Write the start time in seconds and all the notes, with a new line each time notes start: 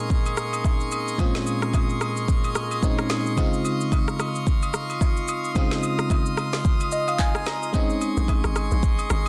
Already playing: A#2 G#3 A#3 C4 C#4 D#4 G#4 D#5 C6 C#6
0.10 kick, shaker
0.26 high agogo, shaker
0.37 cross-stick, shaker
0.53 high agogo, shaker
0.64 kick, low woodblock, shaker
0.80 shaker
0.92 high agogo, shaker
1.08 shaker
1.18 A#2 G#3 C4 C#4 F4, kick, high agogo, shaker
1.35 snare, shaker
1.46 high agogo, shaker
1.62 cross-stick, shaker
1.74 kick, high agogo, low woodblock, shaker
1.89 shaker
2.01 cross-stick, high agogo, shaker
2.17 shaker
2.28 kick, shaker
2.44 high agogo, shaker
2.55 cross-stick, shaker
2.71 high agogo, shaker
2.82 A#2 G#3 C4 C#4 D#4, kick, low woodblock, shaker
2.98 cross-stick, shaker
3.10 snare, high agogo, shaker
3.26 shaker
3.36 C#3 G#3 C4 D#4 F4, kick, high agogo, shaker
3.53 shaker
3.65 high agogo, shaker
3.81 shaker
3.92 kick, high agogo, low woodblock, shaker
4.08 cross-stick, shaker
4.20 cross-stick, high agogo, shaker
4.35 shaker
4.47 kick, shaker
4.62 high agogo, shaker
4.74 cross-stick, shaker
4.90 high agogo, shaker
5.01 kick, low woodblock, shaker
5.17 shaker
5.28 high agogo, shaker
5.44 shaker
5.55 C#3 G#3 C4 D#4 F4 D#6, kick, high agogo, shaker
5.71 snare, shaker
5.83 high agogo, shaker
5.99 cross-stick, shaker
6.10 kick, high agogo, low woodblock, shaker
6.26 shaker
6.37 cross-stick, high agogo, shaker
6.53 snare, shaker
6.65 kick, shaker
6.80 high agogo, shaker
6.92 D#5, shaker
7.08 F5, high agogo, shaker
7.19 G#5, kick, clap, low woodblock, shaker
7.35 G#5, cross-stick, shaker
7.46 A#5, snare, high agogo, shaker
7.63 shaker
7.73 G#3 C4 C#4 D#4 G#4 D#5 C#6, kick, high agogo, shaker
7.90 shaker
8.01 high agogo, shaker
8.17 A#1, shaker
8.28 kick, high agogo, low woodblock, shaker
8.44 G#1, cross-stick, shaker
8.56 cross-stick, high agogo, shaker
8.71 A#1, shaker
8.83 kick, shaker
8.99 high agogo, shaker
9.10 G#1, cross-stick, shaker